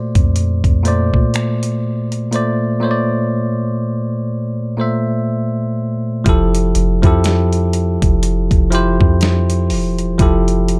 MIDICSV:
0, 0, Header, 1, 4, 480
1, 0, Start_track
1, 0, Key_signature, -1, "major"
1, 0, Tempo, 983607
1, 1135, Time_signature, 4, 2, 24, 8
1, 5268, End_track
2, 0, Start_track
2, 0, Title_t, "Tine electric piano"
2, 0, Program_c, 0, 4
2, 0, Control_c, 0, 64, 127
2, 0, Note_on_c, 0, 46, 81
2, 0, Note_on_c, 0, 57, 72
2, 0, Note_on_c, 0, 66, 54
2, 0, Note_on_c, 0, 72, 75
2, 0, Note_on_c, 0, 74, 89
2, 255, Note_off_c, 0, 46, 0
2, 258, Note_off_c, 0, 57, 0
2, 262, Note_off_c, 0, 72, 0
2, 266, Note_off_c, 0, 74, 0
2, 407, Note_on_c, 0, 46, 80
2, 414, Note_on_c, 0, 57, 76
2, 421, Note_on_c, 0, 72, 73
2, 429, Note_on_c, 0, 74, 92
2, 1023, Note_off_c, 0, 46, 0
2, 1027, Note_off_c, 0, 57, 0
2, 1031, Note_off_c, 0, 72, 0
2, 1035, Note_off_c, 0, 74, 0
2, 1128, Note_on_c, 0, 46, 85
2, 1135, Note_on_c, 0, 57, 77
2, 1143, Note_on_c, 0, 72, 70
2, 1150, Note_on_c, 0, 74, 95
2, 1336, Note_off_c, 0, 46, 0
2, 1340, Note_off_c, 0, 57, 0
2, 1344, Note_off_c, 0, 72, 0
2, 1347, Note_off_c, 0, 74, 0
2, 1366, Note_on_c, 0, 46, 86
2, 1373, Note_on_c, 0, 57, 76
2, 1380, Note_on_c, 0, 72, 73
2, 1388, Note_on_c, 0, 73, 72
2, 1418, Note_off_c, 0, 73, 0
2, 1420, Note_on_c, 0, 74, 91
2, 2174, Note_off_c, 0, 46, 0
2, 2178, Note_off_c, 0, 57, 0
2, 2181, Note_off_c, 0, 72, 0
2, 2201, Note_off_c, 0, 74, 0
2, 2326, Note_on_c, 0, 46, 78
2, 2333, Note_on_c, 0, 57, 75
2, 2341, Note_on_c, 0, 72, 70
2, 2348, Note_on_c, 0, 76, 89
2, 2943, Note_off_c, 0, 46, 0
2, 2946, Note_off_c, 0, 57, 0
2, 2950, Note_off_c, 0, 72, 0
2, 2954, Note_off_c, 0, 76, 0
2, 3047, Note_on_c, 0, 53, 84
2, 3054, Note_on_c, 0, 64, 84
2, 3061, Control_c, 0, 64, 0
2, 3061, Note_on_c, 0, 67, 78
2, 3064, Note_off_c, 0, 66, 0
2, 3070, Note_on_c, 0, 69, 100
2, 3137, Control_c, 0, 64, 127
2, 3357, Note_off_c, 0, 53, 0
2, 3361, Note_off_c, 0, 64, 0
2, 3364, Note_off_c, 0, 67, 0
2, 3369, Note_off_c, 0, 69, 0
2, 3427, Note_on_c, 0, 53, 86
2, 3434, Note_on_c, 0, 64, 80
2, 3441, Note_on_c, 0, 67, 82
2, 3448, Note_on_c, 0, 69, 97
2, 4119, Note_off_c, 0, 53, 0
2, 4123, Note_off_c, 0, 64, 0
2, 4127, Note_off_c, 0, 67, 0
2, 4130, Note_off_c, 0, 69, 0
2, 4246, Note_on_c, 0, 53, 91
2, 4253, Note_on_c, 0, 64, 83
2, 4261, Note_on_c, 0, 67, 88
2, 4269, Note_on_c, 0, 72, 105
2, 4863, Note_off_c, 0, 53, 0
2, 4867, Note_off_c, 0, 64, 0
2, 4870, Note_off_c, 0, 67, 0
2, 4874, Note_off_c, 0, 72, 0
2, 4967, Note_on_c, 0, 53, 88
2, 4974, Note_on_c, 0, 64, 83
2, 4981, Note_on_c, 0, 67, 84
2, 4989, Note_on_c, 0, 69, 95
2, 5268, Note_off_c, 0, 53, 0
2, 5268, Note_off_c, 0, 64, 0
2, 5268, Note_off_c, 0, 67, 0
2, 5268, Note_off_c, 0, 69, 0
2, 5268, End_track
3, 0, Start_track
3, 0, Title_t, "808-style bass"
3, 0, Program_c, 1, 38
3, 76, Note_on_c, 1, 41, 95
3, 305, Note_off_c, 1, 41, 0
3, 313, Note_on_c, 1, 41, 94
3, 544, Note_off_c, 1, 41, 0
3, 556, Note_on_c, 1, 46, 99
3, 1116, Note_off_c, 1, 46, 0
3, 3056, Note_on_c, 1, 29, 114
3, 3286, Note_off_c, 1, 29, 0
3, 3296, Note_on_c, 1, 29, 101
3, 3429, Note_off_c, 1, 29, 0
3, 3433, Note_on_c, 1, 41, 107
3, 3894, Note_off_c, 1, 41, 0
3, 3915, Note_on_c, 1, 29, 107
3, 4145, Note_off_c, 1, 29, 0
3, 4154, Note_on_c, 1, 29, 102
3, 4384, Note_off_c, 1, 29, 0
3, 4396, Note_on_c, 1, 41, 105
3, 4737, Note_on_c, 1, 28, 102
3, 4744, Note_off_c, 1, 41, 0
3, 4964, Note_off_c, 1, 28, 0
3, 4975, Note_on_c, 1, 29, 121
3, 5268, Note_off_c, 1, 29, 0
3, 5268, End_track
4, 0, Start_track
4, 0, Title_t, "Drums"
4, 74, Note_on_c, 9, 42, 50
4, 75, Note_on_c, 9, 36, 91
4, 123, Note_off_c, 9, 42, 0
4, 124, Note_off_c, 9, 36, 0
4, 174, Note_on_c, 9, 42, 79
4, 223, Note_off_c, 9, 42, 0
4, 313, Note_on_c, 9, 36, 83
4, 314, Note_on_c, 9, 42, 45
4, 361, Note_off_c, 9, 36, 0
4, 363, Note_off_c, 9, 42, 0
4, 415, Note_on_c, 9, 42, 66
4, 464, Note_off_c, 9, 42, 0
4, 555, Note_on_c, 9, 36, 80
4, 604, Note_off_c, 9, 36, 0
4, 653, Note_on_c, 9, 42, 74
4, 662, Note_on_c, 9, 26, 102
4, 702, Note_off_c, 9, 42, 0
4, 711, Note_off_c, 9, 26, 0
4, 795, Note_on_c, 9, 42, 51
4, 843, Note_off_c, 9, 42, 0
4, 1034, Note_on_c, 9, 42, 50
4, 1083, Note_off_c, 9, 42, 0
4, 1135, Note_on_c, 9, 42, 56
4, 1184, Note_off_c, 9, 42, 0
4, 3054, Note_on_c, 9, 42, 64
4, 3055, Note_on_c, 9, 36, 123
4, 3103, Note_off_c, 9, 36, 0
4, 3103, Note_off_c, 9, 42, 0
4, 3194, Note_on_c, 9, 42, 56
4, 3243, Note_off_c, 9, 42, 0
4, 3294, Note_on_c, 9, 42, 83
4, 3343, Note_off_c, 9, 42, 0
4, 3432, Note_on_c, 9, 36, 99
4, 3434, Note_on_c, 9, 42, 47
4, 3481, Note_off_c, 9, 36, 0
4, 3483, Note_off_c, 9, 42, 0
4, 3534, Note_on_c, 9, 42, 67
4, 3541, Note_on_c, 9, 38, 127
4, 3583, Note_off_c, 9, 42, 0
4, 3590, Note_off_c, 9, 38, 0
4, 3673, Note_on_c, 9, 42, 52
4, 3722, Note_off_c, 9, 42, 0
4, 3774, Note_on_c, 9, 42, 81
4, 3823, Note_off_c, 9, 42, 0
4, 3915, Note_on_c, 9, 36, 97
4, 3915, Note_on_c, 9, 42, 49
4, 3963, Note_off_c, 9, 42, 0
4, 3964, Note_off_c, 9, 36, 0
4, 4015, Note_on_c, 9, 42, 86
4, 4064, Note_off_c, 9, 42, 0
4, 4153, Note_on_c, 9, 36, 90
4, 4155, Note_on_c, 9, 42, 48
4, 4201, Note_off_c, 9, 36, 0
4, 4204, Note_off_c, 9, 42, 0
4, 4255, Note_on_c, 9, 42, 71
4, 4304, Note_off_c, 9, 42, 0
4, 4395, Note_on_c, 9, 36, 88
4, 4444, Note_off_c, 9, 36, 0
4, 4494, Note_on_c, 9, 42, 80
4, 4503, Note_on_c, 9, 38, 109
4, 4543, Note_off_c, 9, 42, 0
4, 4552, Note_off_c, 9, 38, 0
4, 4634, Note_on_c, 9, 42, 55
4, 4683, Note_off_c, 9, 42, 0
4, 4734, Note_on_c, 9, 46, 73
4, 4783, Note_off_c, 9, 46, 0
4, 4873, Note_on_c, 9, 42, 56
4, 4922, Note_off_c, 9, 42, 0
4, 4974, Note_on_c, 9, 36, 127
4, 4974, Note_on_c, 9, 42, 58
4, 5022, Note_off_c, 9, 42, 0
4, 5023, Note_off_c, 9, 36, 0
4, 5114, Note_on_c, 9, 42, 55
4, 5163, Note_off_c, 9, 42, 0
4, 5214, Note_on_c, 9, 42, 80
4, 5263, Note_off_c, 9, 42, 0
4, 5268, End_track
0, 0, End_of_file